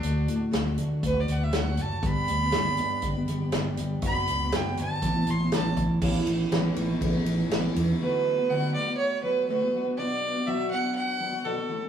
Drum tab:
CC |--------|--------|--------|x-------|
RD |--------|--------|--------|-xxxxxxx|
HH |xxxxxxxx|xxxxxxxx|xxxxxxxx|--------|
SD |--o---o-|--o---o-|--o---o-|--o---o-|
BD |----o---|o---o---|o---o--o|o---o---|

CC |--------|--------|
RD |--------|--------|
HH |--------|--------|
SD |--------|--------|
BD |--------|--------|